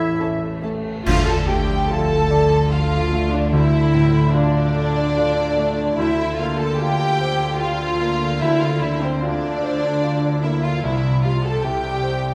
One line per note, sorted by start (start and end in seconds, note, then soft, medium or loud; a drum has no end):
0.00 0.10 A1 medium
0.00 1.02 A1 medium
0.00 1.08 E2 medium
0.00 1.09 A2 medium
0.00 0.60 E3 medium
0.00 0.63 A3 medium
0.00 0.84 A3 soft
0.00 0.62 E4 medium
0.00 0.64 E4 medium
0.00 0.19 A4 medium
0.00 0.40 A4 medium
0.00 0.45 C#5 medium
0.00 0.59 C#5 medium
0.00 0.62 C#5 medium
0.00 0.63 E5 medium
0.00 0.19 A5 medium
0.00 1.09 C#6 medium
0.19 0.96 A1 medium
0.19 0.28 C#4 medium
0.19 0.88 A4 medium
0.19 0.28 A4 medium
0.19 0.28 A5 medium
0.19 4.10 A5 medium
0.42 2.09 A4 medium
0.62 1.05 A3 medium
0.62 0.70 C#4 medium
0.62 0.70 A4 medium
0.62 1.09 C#5 medium
0.62 0.71 A5 medium
0.85 1.47 A3 soft
1.05 3.48 D2 medium
1.05 5.94 D2 medium
1.05 5.94 D3 medium
1.05 3.51 D3 medium
1.05 2.26 D3 loud
1.05 1.25 F4 medium
1.05 1.26 F4 loud
1.05 1.26 F5 loud
1.05 concert bass drum medium
1.05 crash medium
1.27 3.72 D4 medium
1.27 1.48 A4 medium
1.27 1.48 A4 loud
1.27 1.48 A5 loud
1.48 3.31 A3 medium
1.48 2.14 A3 medium
1.48 1.89 G4 medium
1.48 1.90 G4 medium
1.48 1.89 G5 loud
1.69 5.59 F3 medium
1.89 2.55 F4 medium
1.89 2.70 A4 loud
1.89 2.72 A4 medium
1.89 3.10 D5 medium
1.89 2.71 A5 loud
2.10 2.90 A4 medium
2.31 2.95 D5 medium
2.51 4.95 D6 medium
2.70 3.30 F4 medium
2.70 3.32 F4 loud
2.70 3.37 F4 medium
2.70 3.32 F5 loud
2.91 4.54 A4 medium
3.11 3.77 A3 medium
3.11 4.33 D5 medium
3.32 3.92 A3 medium
3.32 3.52 D4 medium
3.32 3.53 D5 medium
3.52 5.94 D2 medium
3.52 5.97 D3 medium
3.52 4.33 E4 loud
3.52 4.34 E4 loud
3.52 4.32 E5 loud
3.73 6.18 D4 medium
3.93 4.59 A2 medium
3.93 5.78 A3 medium
4.33 5.94 D4 loud
4.33 5.98 D4 loud
4.33 4.99 F4 medium
4.33 5.57 D5 medium
4.33 5.98 D5 loud
4.55 5.36 A4 medium
4.75 5.41 D5 medium
4.96 8.86 D6 medium
5.17 5.82 F4 medium
5.38 6.02 A4 medium
5.57 5.98 A3 medium
5.57 9.48 D5 medium
5.79 6.02 A3 medium
5.97 10.78 D2 medium
5.97 8.37 D2 medium
5.97 10.78 D3 medium
5.97 8.41 D3 medium
5.97 6.38 E4 loud
5.97 6.37 E4 medium
5.97 6.39 E5 loud
6.19 8.61 D4 medium
6.38 8.21 A#3 medium
6.38 7.03 A#3 medium
6.38 6.58 F4 medium
6.38 6.59 F4 medium
6.38 6.59 F5 medium
6.57 9.02 F4 medium
6.57 6.78 A4 medium
6.57 6.79 A4 medium
6.57 6.79 A5 loud
6.78 7.45 F4 medium
6.78 7.58 G4 medium
6.78 7.60 G4 loud
6.78 8.01 C5 medium
6.78 7.60 G5 loud
6.99 7.79 A#4 medium
7.20 7.85 C5 medium
7.20 7.59 F5 medium
7.40 9.81 C6 medium
7.59 8.24 F4 medium
7.59 8.41 F4 loud
7.59 9.61 F5 medium
7.59 8.40 F5 loud
7.81 9.42 A#4 medium
8.01 8.65 A#3 medium
8.01 9.21 C5 medium
8.22 8.81 A#3 medium
8.40 10.79 D2 medium
8.40 10.86 D3 medium
8.40 8.61 E4 loud
8.40 8.61 E4 medium
8.40 8.61 E5 loud
8.62 10.86 D4 medium
8.62 8.81 F4 medium
8.62 8.81 F5 loud
8.81 9.46 D3 medium
8.81 10.61 A#3 medium
8.81 9.01 E4 medium
8.81 9.02 E5 loud
9.01 9.21 C4 medium
9.01 9.22 C4 medium
9.01 10.86 F4 medium
9.01 9.23 C5 loud
9.22 10.43 D4 loud
9.22 10.43 D4 medium
9.22 9.86 F4 medium
9.22 10.41 C5 medium
9.22 10.43 D5 loud
9.43 10.21 A#4 medium
9.62 10.27 C5 medium
9.62 10.01 F5 medium
9.82 12.22 C6 medium
10.02 10.67 F4 medium
10.02 10.86 F5 medium
10.22 10.86 A#4 medium
10.43 10.83 A#3 medium
10.43 10.63 E4 medium
10.43 11.62 C5 medium
10.43 10.63 E5 loud
10.63 10.86 A#3 medium
10.63 10.83 F4 medium
10.63 10.83 F5 medium
10.83 12.34 C2 medium
10.83 11.53 C2 medium
10.83 12.34 C3 medium
10.83 11.53 C3 medium
10.83 11.22 E4 medium
10.83 11.23 E4 medium
10.83 11.23 E5 loud
11.03 12.34 C4 medium
11.24 12.34 G3 medium
11.24 11.87 G3 medium
11.24 11.43 F4 medium
11.24 11.43 F5 medium
11.43 11.63 A4 medium
11.43 11.64 A5 loud
11.63 12.33 C2 medium
11.63 12.32 C3 medium
11.63 12.27 E4 medium
11.63 12.34 G4 medium
11.63 12.34 C5 medium
11.63 12.34 G5 loud
11.84 12.34 G4 medium
12.03 12.34 C5 medium
12.03 12.34 G5 medium
12.23 12.34 C6 medium